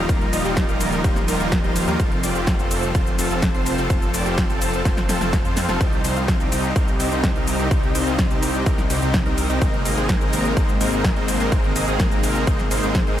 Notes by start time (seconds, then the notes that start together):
Already playing: F3 G3 D#4
0.09 D#1 G3 A#3 D#4 F4 A#4, kick, closed hi-hat, ride, shaker
0.21 closed hi-hat
0.33 D#1 G3 A#3 D#4 F4 D#5, open hi-hat, ride, shaker
0.45 D#1 G3 A#3 D#4 F4 G4, closed hi-hat, shaker
0.57 kick, snare, closed hi-hat, ride, shaker
0.69 D#1 G3 A#3 D#4 F4 A#4, closed hi-hat, shaker
0.80 D#1 G3 A#3 D#4 F4 A#4, open hi-hat, ride, shaker
0.92 closed hi-hat, shaker
1.04 D#1 G3 A#3 D#4 F4 C5, kick, closed hi-hat, ride, shaker
1.16 snare, closed hi-hat, shaker
1.28 D#1 G3 A#3 D#4 F4 A#4, open hi-hat, ride, shaker
1.40 D#1 G3 A#3 D#4 F4 A#4, closed hi-hat, shaker
1.52 kick, snare, closed hi-hat, ride, shaker
1.64 D#1 G3 A#3 D#4 F4 C5, closed hi-hat
1.76 open hi-hat, ride, shaker
1.88 D#2 G3 A#3 D#4 F4 A#4, closed hi-hat, shaker
2.00 F1 C4 F4 A4, kick, closed hi-hat, ride, shaker
2.12 closed hi-hat
2.23 F1 C4 F4 D5, open hi-hat, ride, shaker
2.35 F1 C4 F4 G4, closed hi-hat, shaker
2.47 kick, snare, closed hi-hat, ride, shaker
2.59 F1 C4 F4 A4, closed hi-hat, shaker
2.71 F1 C4 F4 A4, open hi-hat, ride, shaker
2.83 closed hi-hat, shaker
2.95 F1 C4 F4 C5, kick, closed hi-hat, ride, shaker
3.07 closed hi-hat, shaker
3.19 F1 C4 F4 A4, open hi-hat, ride, shaker
3.31 F1 C4 F4 A4, closed hi-hat, shaker
3.42 kick, snare, closed hi-hat, ride, shaker
3.54 F1 C4 F4 C5, closed hi-hat
3.66 open hi-hat, ride, shaker
3.78 F1 C4 F4 A4, closed hi-hat, shaker
3.90 F1 C4 F4 A4, kick, closed hi-hat, ride, shaker
4.02 closed hi-hat, shaker
4.14 F1 C4 F4 D5, open hi-hat, ride, shaker
4.26 F1 C4 F4 G4, closed hi-hat, shaker
4.38 kick, snare, closed hi-hat, ride, shaker
4.50 F1 C4 F4 A4, closed hi-hat, shaker
4.61 F1 C4 F4 A4, open hi-hat, ride, shaker
4.74 closed hi-hat, shaker
4.85 F1 C4 F4 C5, kick, snare, closed hi-hat, ride, shaker
4.97 snare, closed hi-hat, shaker
5.09 F1 C4 F4 A4, snare, open hi-hat, ride, shaker
5.21 F1 C4 F4 A4, snare, closed hi-hat, shaker
5.33 kick, snare, closed hi-hat, ride, shaker
5.45 F2 C4 F4 C5, closed hi-hat, shaker
5.57 snare, open hi-hat, ride, shaker
5.69 F1 C4 F4 A4, snare, closed hi-hat, shaker
5.81 C2 C3 G3 C4 D#4 G4, kick, closed hi-hat, ride, shaker
5.93 closed hi-hat
6.04 C2 C4 D#4 C5, open hi-hat, ride, shaker
6.16 C2 C4 D#4 F4, closed hi-hat, shaker
6.28 kick, snare, closed hi-hat, ride, shaker
6.40 C2 C4 D#4 G4, closed hi-hat, shaker
6.52 C2 C4 D#4 G4, open hi-hat, ride, shaker
6.64 closed hi-hat, shaker
6.76 C2 C4 D#4 A#4, kick, closed hi-hat, ride, shaker
6.88 closed hi-hat, shaker
7.00 C2 C4 D#4 G4, open hi-hat, ride, shaker
7.12 C2 C4 D#4 G4, closed hi-hat, shaker
7.24 kick, snare, closed hi-hat, ride, shaker
7.35 C2 C4 D#4 A#4, closed hi-hat
7.47 open hi-hat, ride, shaker
7.59 C2 C4 D#4 G4, closed hi-hat, shaker
7.71 C2 C4 D#4 G4, kick, closed hi-hat, ride, shaker
7.83 closed hi-hat
7.95 C2 C4 D#4 C5, open hi-hat, ride, shaker
8.07 C2 C4 D#4 F4, closed hi-hat, shaker
8.19 kick, snare, closed hi-hat, ride, shaker
8.31 C2 C4 D#4 G4, closed hi-hat, shaker
8.43 C2 C4 D#4 G4, open hi-hat, ride, shaker
8.55 closed hi-hat, shaker
8.66 C2 C4 D#4 A#4, kick, closed hi-hat, ride, shaker
8.78 snare, closed hi-hat, shaker
8.90 C2 C4 D#4 G4, open hi-hat, ride, shaker
9.02 C2 C4 D#4 G4, closed hi-hat, shaker
9.14 kick, snare, closed hi-hat, ride, shaker
9.26 C2 C4 D#4 A#4, closed hi-hat
9.38 open hi-hat, ride, shaker
9.50 C2 C4 D#4 G4, closed hi-hat, shaker
9.61 G#1 G#3 A#3 C4 D#4 A#4, kick, closed hi-hat, ride, shaker
9.74 closed hi-hat
9.85 G#1 G#3 A#3 C4 D#4 D#5, open hi-hat, ride, shaker
9.97 G#1 G#3 A#3 C4 D#4 G#4, closed hi-hat, shaker
10.09 kick, snare, closed hi-hat, ride, shaker
10.21 G#1 G#3 A#3 C4 D#4 A#4, closed hi-hat, shaker
10.33 G#1 G#3 A#3 C4 D#4 A#4, open hi-hat, ride, shaker
10.45 closed hi-hat, shaker
10.57 G#1 G#3 A#3 C4 D#4 C5, kick, closed hi-hat, ride, shaker
10.69 closed hi-hat, shaker
10.81 G#1 G#3 A#3 C4 D#4 A#4, open hi-hat, ride, shaker
10.93 G#1 G#3 A#3 C4 D#4 A#4, closed hi-hat, shaker
11.04 kick, snare, closed hi-hat, ride, shaker
11.16 G#1 G#3 A#3 C4 D#4 C5, closed hi-hat
11.28 open hi-hat, ride, shaker
11.40 G#1 G#3 A#3 C4 D#4 A#4, closed hi-hat, shaker
11.52 G#1 G#3 A#3 C4 D#4 A#4, kick, closed hi-hat, ride, shaker
11.64 closed hi-hat
11.76 G#1 G#3 A#3 C4 D#4 D#5, open hi-hat, ride, shaker
11.88 G#1 G#3 A#3 C4 D#4 G#4, closed hi-hat, shaker
12.00 kick, snare, closed hi-hat, ride, shaker
12.12 G#1 G#3 A#3 C4 D#4 A#4, closed hi-hat, shaker
12.23 G#1 G#3 A#3 C4 D#4 A#4, open hi-hat, ride, shaker
12.35 closed hi-hat, shaker
12.47 G#1 G#3 A#3 C4 D#4 C5, kick, closed hi-hat, ride, shaker
12.59 snare, closed hi-hat, shaker
12.71 G#1 G#3 A#3 C4 D#4 C5, open hi-hat, ride, shaker
12.83 G#1 G#3 A#3 C4 D#4 C5, closed hi-hat, shaker
12.95 kick, snare, closed hi-hat, ride, shaker
13.07 G#2 G#3 A#3 C4 D#4 C5, closed hi-hat